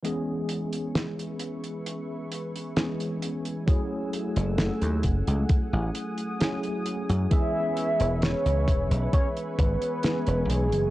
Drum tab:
HH |x-xxxxxxx-xxxxxx|x-xxxxxxx-xxxxxx|x-xxxxxxxxxxxxxx|
SD |----o-------o---|----o-------o---|----o-------o---|
BD |----------------|o-----o-o-------|o-----o-o-o-----|